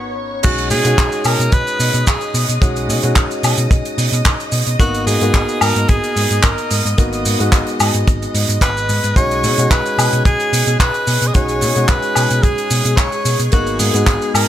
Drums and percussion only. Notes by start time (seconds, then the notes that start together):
0.43 kick, closed hi-hat, crash, shaker
0.58 closed hi-hat, shaker
0.70 open hi-hat, shaker
0.85 closed hi-hat, shaker
0.98 kick, clap, closed hi-hat, shaker
1.12 closed hi-hat, shaker
1.24 open hi-hat, high woodblock, shaker
1.40 closed hi-hat, shaker
1.52 kick, closed hi-hat, shaker
1.67 closed hi-hat, shaker
1.80 open hi-hat, shaker
1.94 closed hi-hat, shaker
2.07 kick, clap, closed hi-hat, shaker
2.21 closed hi-hat, shaker
2.35 open hi-hat, shaker
2.49 closed hi-hat, shaker
2.62 kick, closed hi-hat, shaker
2.76 closed hi-hat, shaker
2.90 open hi-hat, shaker
3.03 closed hi-hat, shaker
3.16 kick, clap, closed hi-hat, shaker
3.31 closed hi-hat, shaker
3.43 open hi-hat, high woodblock, shaker
3.57 closed hi-hat, shaker
3.71 kick, closed hi-hat, shaker
3.85 closed hi-hat, shaker
3.98 open hi-hat, shaker
4.13 closed hi-hat, shaker
4.25 kick, clap, closed hi-hat, shaker
4.40 closed hi-hat, shaker
4.52 open hi-hat, shaker
4.66 closed hi-hat, shaker
4.80 kick, closed hi-hat, shaker
4.94 closed hi-hat, shaker
5.07 open hi-hat, shaker
5.21 closed hi-hat, shaker
5.34 kick, clap, closed hi-hat, shaker
5.49 closed hi-hat, shaker
5.61 open hi-hat, high woodblock, shaker
5.76 closed hi-hat, shaker
5.89 kick, closed hi-hat, shaker
6.04 closed hi-hat, shaker
6.16 open hi-hat, shaker
6.31 closed hi-hat, shaker
6.43 kick, clap, closed hi-hat, shaker
6.58 closed hi-hat, shaker
6.71 open hi-hat, shaker
6.86 closed hi-hat, shaker
6.98 kick, closed hi-hat, shaker
7.13 closed hi-hat, shaker
7.25 open hi-hat, shaker
7.40 closed hi-hat, shaker
7.52 kick, clap, closed hi-hat, shaker
7.67 closed hi-hat, shaker
7.80 open hi-hat, high woodblock, shaker
7.94 closed hi-hat, shaker
8.07 kick, closed hi-hat, shaker
8.22 closed hi-hat, shaker
8.35 open hi-hat, shaker
8.49 closed hi-hat, shaker
8.61 kick, clap, closed hi-hat, shaker
8.77 closed hi-hat, shaker
8.89 open hi-hat, shaker
9.04 closed hi-hat, shaker
9.16 kick, closed hi-hat, shaker
9.31 closed hi-hat, shaker
9.44 open hi-hat, shaker
9.58 closed hi-hat, shaker
9.71 kick, clap, closed hi-hat, shaker
9.86 closed hi-hat, shaker
9.99 open hi-hat, high woodblock, shaker
10.13 closed hi-hat, shaker
10.25 kick, closed hi-hat, shaker
10.40 closed hi-hat, shaker
10.53 open hi-hat, shaker
10.67 closed hi-hat, shaker
10.80 kick, clap, closed hi-hat, shaker
10.94 closed hi-hat, shaker
11.07 open hi-hat, shaker
11.22 closed hi-hat, shaker
11.34 kick, closed hi-hat, shaker
11.49 closed hi-hat, shaker
11.61 open hi-hat, shaker
11.76 closed hi-hat, shaker
11.88 kick, clap, closed hi-hat, shaker
12.02 closed hi-hat, shaker
12.15 open hi-hat, high woodblock, shaker
12.30 closed hi-hat, shaker
12.43 kick, closed hi-hat, shaker
12.58 closed hi-hat, shaker
12.70 open hi-hat, shaker
12.85 closed hi-hat, shaker
12.97 kick, clap, closed hi-hat, shaker
13.12 closed hi-hat, shaker
13.25 open hi-hat, shaker
13.39 closed hi-hat, shaker
13.52 kick, closed hi-hat, shaker
13.66 closed hi-hat, shaker
13.79 open hi-hat, shaker
13.94 closed hi-hat, shaker
14.07 kick, clap, closed hi-hat, shaker
14.22 closed hi-hat, shaker
14.35 open hi-hat, high woodblock, shaker